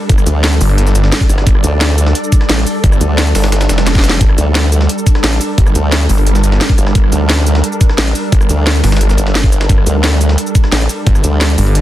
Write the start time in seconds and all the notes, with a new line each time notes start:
Already playing: G3 D4 A4 D5
0.09 G1, kick, closed hi-hat
0.18 cross-stick, shaker
0.27 D2, closed hi-hat, shaker
0.44 snare, closed hi-hat
0.52 shaker
0.61 G1, closed hi-hat, open hi-hat, shaker
0.69 closed hi-hat
0.78 closed hi-hat
0.87 snare, shaker
0.95 closed hi-hat, shaker
1.04 snare
1.12 snare, closed hi-hat
1.21 kick, snare, shaker
1.29 G1, cross-stick, closed hi-hat, shaker
1.38 cross-stick, snare
1.47 G1, kick, closed hi-hat
1.55 cross-stick
1.64 D2, closed hi-hat, shaker
1.81 snare, closed hi-hat
1.89 snare
1.98 closed hi-hat, shaker
2.07 snare
2.15 closed hi-hat
2.24 shaker
2.32 kick, closed hi-hat, shaker
2.41 cross-stick, snare
2.49 A1, snare, closed hi-hat
2.58 shaker
2.66 closed hi-hat, open hi-hat, shaker
2.84 G1, kick, closed hi-hat
2.92 cross-stick, shaker
3.01 D2, closed hi-hat, shaker
3.18 snare, closed hi-hat
3.27 shaker
3.35 G1, snare, closed hi-hat, open hi-hat, shaker
3.44 snare, closed hi-hat
3.52 snare, closed hi-hat
3.61 snare, closed hi-hat, shaker
3.69 F1, snare, closed hi-hat, shaker
3.78 snare, closed hi-hat
3.87 snare, closed hi-hat
3.95 kick, snare, closed hi-hat, shaker
3.98 snare
4.04 snare, closed hi-hat, shaker
4.09 snare
4.12 snare
4.21 G1 A#4, kick, closed hi-hat
4.29 cross-stick
4.38 D2, closed hi-hat, shaker
4.55 snare, closed hi-hat
4.64 snare
4.72 closed hi-hat, shaker
4.81 snare
4.89 closed hi-hat
4.98 shaker
5.07 kick, closed hi-hat, shaker
5.15 cross-stick, snare
5.24 A1, snare, closed hi-hat
5.32 shaker
5.41 closed hi-hat, open hi-hat, shaker
5.58 G1, kick, closed hi-hat
5.67 cross-stick, shaker
5.75 D2, closed hi-hat, shaker
5.92 snare, closed hi-hat
6.01 shaker
6.09 G1, closed hi-hat, open hi-hat, shaker
6.18 closed hi-hat
6.27 closed hi-hat
6.35 snare, shaker
6.44 closed hi-hat, shaker
6.52 snare
6.61 snare, closed hi-hat
6.69 kick, snare, shaker
6.78 G1, cross-stick, closed hi-hat, shaker
6.87 cross-stick, snare
6.95 G1, kick, closed hi-hat
7.04 cross-stick
7.12 D2, closed hi-hat, shaker
7.29 snare, closed hi-hat
7.38 snare
7.47 closed hi-hat, shaker
7.55 snare
7.64 closed hi-hat
7.72 shaker
7.81 kick, closed hi-hat, shaker
7.89 cross-stick, snare
7.98 A1, snare, closed hi-hat
8.07 shaker
8.15 closed hi-hat, open hi-hat, shaker
8.32 G1, kick, closed hi-hat
8.41 cross-stick, shaker
8.49 D2, closed hi-hat, shaker
8.67 snare, closed hi-hat
8.75 shaker
8.84 G1, snare, closed hi-hat, open hi-hat, shaker
8.92 snare, closed hi-hat
8.97 snare, closed hi-hat
9.01 closed hi-hat
9.09 snare, shaker
9.18 G1, closed hi-hat, shaker
9.27 snare
9.35 snare, closed hi-hat
9.44 kick, snare, shaker
9.52 cross-stick, closed hi-hat, shaker
9.61 cross-stick, snare, closed hi-hat
9.69 G1 D5, kick, closed hi-hat
9.78 cross-stick
9.87 D2, closed hi-hat, shaker
10.04 snare, closed hi-hat
10.12 snare
10.21 closed hi-hat, shaker
10.29 snare
10.38 closed hi-hat
10.47 shaker
10.55 kick, closed hi-hat, shaker
10.64 cross-stick, snare
10.72 A1, snare, closed hi-hat
10.81 shaker
10.89 closed hi-hat, open hi-hat, shaker
11.07 G1, kick, closed hi-hat
11.15 cross-stick, shaker
11.24 D2, closed hi-hat, shaker
11.41 snare, closed hi-hat
11.49 shaker
11.58 G1, closed hi-hat, open hi-hat, shaker
11.67 closed hi-hat
11.75 closed hi-hat